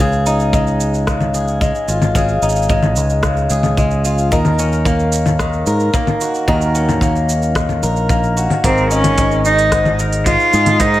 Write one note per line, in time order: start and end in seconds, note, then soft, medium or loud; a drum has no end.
0.00 1.71 C#2 medium
0.00 1.07 C#3 medium
0.00 1.33 G#4 medium
0.13 cabasa soft
0.26 2.42 D#4 medium
0.26 cabasa medium
0.40 cabasa soft
0.53 1.60 G#3 medium
0.53 kick loud
0.53 cabasa soft
0.67 cabasa soft
0.80 cabasa medium
0.94 cabasa soft
1.07 2.14 C#3 medium
1.07 kick medium
1.07 cross-stick medium
1.07 cabasa soft
1.21 low conga medium
1.21 cabasa soft
1.34 2.15 G#4 medium
1.34 cabasa medium
1.48 cabasa soft
1.61 2.69 G#3 medium
1.61 kick loud
1.61 cabasa soft
1.75 cabasa soft
1.88 2.38 G#1 medium
1.88 4.04 F4 medium
1.88 cabasa medium
2.02 low conga medium
2.02 cabasa soft
2.15 3.22 C#3 medium
2.15 3.49 G#4 medium
2.15 kick loud
2.15 cabasa soft
2.29 cabasa soft
2.42 2.96 G#1 medium
2.42 4.59 D#4 medium
2.42 cabasa medium
2.49 cabasa medium
2.56 cabasa soft
2.62 cabasa soft
2.69 3.77 G#3 medium
2.69 kick loud
2.69 cabasa soft
2.83 low conga medium
2.83 cabasa soft
2.96 3.46 C#2 medium
2.96 cabasa medium
3.10 cabasa soft
3.23 4.31 C#3 medium
3.23 kick medium
3.23 cross-stick medium
3.23 cabasa soft
3.37 cabasa soft
3.50 4.32 C#2 medium
3.50 4.32 G#4 medium
3.50 cabasa medium
3.63 low conga medium
3.63 cabasa soft
3.77 4.37 G#3 medium
3.77 kick loud
3.77 cabasa soft
3.91 cabasa soft
4.05 4.37 F4 medium
4.05 cabasa medium
4.18 cabasa soft
4.32 5.63 D#2 loud
4.32 5.40 D#3 medium
4.32 5.67 A#4 medium
4.32 kick medium
4.32 cabasa soft
4.45 low conga medium
4.45 cabasa soft
4.59 6.74 C#4 medium
4.59 cabasa medium
4.72 cabasa soft
4.85 5.94 A#3 medium
4.85 kick loud
4.85 cabasa soft
4.99 cabasa soft
5.12 cabasa medium
5.26 low conga medium
5.26 cabasa soft
5.39 6.48 D#3 medium
5.39 kick medium
5.39 cross-stick medium
5.39 cabasa soft
5.53 cabasa soft
5.66 5.88 G#2 medium
5.66 6.48 A#4 medium
5.66 cabasa medium
5.80 cabasa soft
5.94 7.02 A#3 medium
5.94 kick loud
5.94 cabasa soft
6.07 low conga medium
6.07 cabasa soft
6.21 8.35 F#4 medium
6.21 cabasa medium
6.34 cabasa soft
6.48 7.82 D#2 loud
6.48 7.55 D#3 medium
6.48 7.82 A#4 medium
6.48 kick loud
6.61 cabasa soft
6.75 8.69 C#4 medium
6.75 cabasa medium
6.89 low conga medium
6.89 cabasa soft
7.01 8.09 A#3 medium
7.01 kick loud
7.01 cabasa soft
7.16 cabasa soft
7.29 cabasa medium
7.42 cabasa soft
7.55 11.00 D#3 medium
7.55 kick medium
7.55 cross-stick medium
7.55 cabasa soft
7.69 low conga medium
7.69 cabasa soft
7.83 8.46 A#1 medium
7.83 8.64 A#4 medium
7.83 cabasa medium
7.96 cabasa soft
8.09 9.18 A#3 medium
8.09 kick loud
8.09 cabasa soft
8.23 cabasa soft
8.37 8.69 F#4 medium
8.37 cabasa medium
8.50 low conga medium
8.50 cabasa soft
8.64 10.35 G#1 medium
8.64 9.71 G#2 medium
8.64 8.90 C4 medium
8.64 9.99 A#4 medium
8.64 kick medium
8.64 open hi-hat soft
8.64 cabasa soft
8.78 cabasa soft
8.91 9.41 C#4 loud
8.91 11.00 D#4 medium
8.91 cabasa medium
9.04 open hi-hat soft
9.04 low conga medium
9.04 cabasa soft
9.18 10.26 G#3 medium
9.18 kick loud
9.18 open hi-hat soft
9.18 cabasa soft
9.31 cabasa soft
9.45 9.96 D#4 medium
9.45 cabasa medium
9.59 open hi-hat soft
9.59 cabasa soft
9.72 10.79 G#2 medium
9.72 kick loud
9.72 cross-stick medium
9.72 open hi-hat soft
9.72 cabasa soft
9.85 low conga medium
9.85 cabasa soft
9.99 10.80 A#4 medium
9.99 cabasa medium
10.13 open hi-hat soft
10.13 cabasa soft
10.26 11.00 G#3 medium
10.26 10.82 F4 loud
10.26 kick loud
10.26 open hi-hat soft
10.26 cabasa soft
10.40 cabasa soft
10.53 11.00 G#2 loud
10.53 11.00 G#4 medium
10.53 cabasa medium
10.66 open hi-hat soft
10.66 low conga medium
10.66 cabasa soft
10.80 11.00 G#2 medium
10.80 11.00 D#4 loud
10.80 11.00 A#4 medium
10.80 kick loud
10.80 open hi-hat medium
10.80 cabasa soft
10.94 cabasa soft